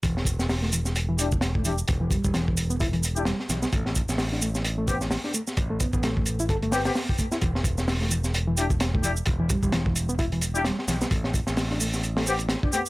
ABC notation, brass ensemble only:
X:1
M:4/4
L:1/16
Q:"Swing 16ths" 1/4=130
K:Em
V:1 name="Brass ensemble"
z8 z2 [DEG] z3 [DEG] z | z8 z3 [DEG] z4 | z8 z2 [B,CG] z4 z | z8 z2 [B,CG] [B,CG] z4 |
z8 z2 [DEG] z3 [DEG] z | z8 z3 [DEG] z4 | z8 z2 [B,CG] z3 [B,CG] z |]